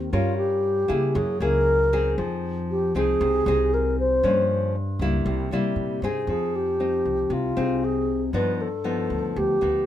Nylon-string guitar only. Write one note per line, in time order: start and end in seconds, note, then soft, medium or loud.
0.00 0.10 D#3 medium
0.13 1.13 G3 medium
0.13 0.86 C#4 medium
0.13 0.86 F4 medium
0.13 0.86 A#4 medium
0.88 1.36 A#3 medium
0.88 1.37 E4 medium
0.88 1.37 G#4 medium
1.15 2.15 F#3 medium
1.41 1.88 A#3 medium
1.41 1.88 E4 medium
1.41 1.89 G#4 medium
1.93 2.91 C4 medium
1.93 2.91 D#4 medium
1.93 2.91 G#4 medium
2.18 3.18 F3 medium
2.95 3.42 C4 medium
2.95 3.43 D#4 medium
2.95 3.43 G#4 medium
3.21 4.21 C3 medium
3.47 4.20 C4 medium
3.47 4.20 D#4 medium
3.47 4.20 G#4 medium
4.24 5.23 G2 medium
4.24 4.74 F3 medium
4.24 4.75 A#3 medium
4.24 4.75 C#4 medium
5.01 5.48 G3 medium
5.01 5.48 A#3 medium
5.01 5.48 E4 medium
5.27 6.26 C3 medium
5.52 5.99 G3 medium
5.52 5.99 A#3 medium
5.52 5.99 E4 medium
6.03 6.78 C4 medium
6.03 6.78 D#4 medium
6.03 6.78 G#4 medium
6.29 7.29 F3 soft
6.80 7.53 C4 soft
6.80 7.53 D#4 soft
7.30 8.31 C3 medium
7.57 8.29 C4 medium
7.57 8.30 D#4 soft
7.57 8.30 G#4 medium
8.34 9.34 G2 soft
8.34 8.67 F3 soft
8.34 8.67 B3 medium
8.34 8.67 D#4 medium
8.84 9.58 F3 medium
8.84 9.58 B3 medium
8.84 9.58 D#4 soft
9.61 9.86 F3 soft
9.61 9.86 B3 medium
9.61 9.86 D#4 medium